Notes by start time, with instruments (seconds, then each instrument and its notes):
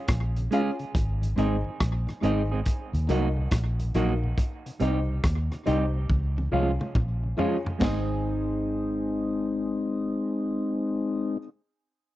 0.08 fingered electric bass A#1, kick, cross-stick, closed hi-hat
0.36 tonewheel organ C#3, closed hi-hat
0.51 clean electric guitar G#3 C#4 F4 G#4, tonewheel organ G#3 C#4 F4, upright piano F4 G#4 C#5 F5, closed hi-hat
0.79 tonewheel organ C#3, closed hi-hat
0.95 fingered electric bass G#1, kick, closed hi-hat
1.22 tonewheel organ G#2 D#3, closed hi-hat
1.36 fingered electric bass G#1, tonewheel organ G#3 C4 D#4, clean electric guitar G#3 C4 D#4 G#4, upright piano D#4 G#4 C5 D#5, closed hi-hat
1.64 tonewheel organ G#2 D#3
1.80 fingered electric bass A#1, kick, cross-stick, closed hi-hat
2.07 tonewheel organ G#2 D#3, cross-stick, closed hi-hat
2.21 fingered electric bass G#1, tonewheel organ G#3 C4 D#4, clean electric guitar G#3 C4 D#4 G#4, upright piano D#4 G#4 C5 D#5, closed hi-hat
2.50 tonewheel organ G#2 D#3, clean electric guitar C4 D#4 G#4
2.54 clean electric guitar G#3
2.66 kick, closed hi-hat
2.93 tonewheel organ D#2 A#2, fingered electric bass D#2, closed hi-hat
3.07 fingered electric bass C2, tonewheel organ F#3 A#3 D#4, clean electric guitar F#3 A#3 D#4 F#4, upright piano D#4 F#4 A#4 D#5, closed hi-hat
3.36 tonewheel organ D#2 A#2, upright piano A#4 D#5
3.51 fingered electric bass A#1, kick, cross-stick, closed hi-hat
3.80 tonewheel organ D#2 A#2, closed hi-hat
3.94 fingered electric bass A#1, tonewheel organ F#3 A#3 D#4, clean electric guitar F#3 A#3 D#4 F#4, upright piano D#4 F#4 A#4 D#5, cross-stick, closed hi-hat
4.24 tonewheel organ D#2 A#2
4.38 kick, closed hi-hat
4.66 tonewheel organ C3, closed hi-hat
4.80 fingered electric bass C2, clean electric guitar G3 C4 D#4 G4, tonewheel organ G3 C4 D#4, upright piano D#4 G4 C5 D#5, closed hi-hat
5.09 tonewheel organ C3
5.24 fingered electric bass D#2, kick, cross-stick, closed hi-hat
5.52 tonewheel organ C3, cross-stick, closed hi-hat
5.66 fingered electric bass C2, clean electric guitar G3 C4 D#4 G4, tonewheel organ G3 C4 D#4, upright piano D#4 G4 C5 D#5, closed hi-hat
5.94 tonewheel organ C3
6.10 fingered electric bass C#2, kick, high tom
6.37 tonewheel organ C#3, high tom
6.52 fingered electric bass C2, clean electric guitar F3 G#3 C#4 F4, tonewheel organ G#3 C#4 F4, upright piano F4 G#4 C#5 F5
6.80 tonewheel organ C#3, upright piano C#5 F5, mid tom
6.95 fingered electric bass A#1, kick, mid tom
7.24 tonewheel organ C#3
7.37 clean electric guitar F3 G#3 C#4 F4, tonewheel organ G#3 C#4 F4, upright piano F4 G#4 C#5 F5, floor tom
7.65 tonewheel organ C#3, floor tom
7.79 fingered electric bass G#1, clean electric guitar G#3 C4 D#4, tonewheel organ G#3 C4 D#4, upright piano D#4 G#4 C5 D#5, kick, snare, splash
7.84 clean electric guitar G#4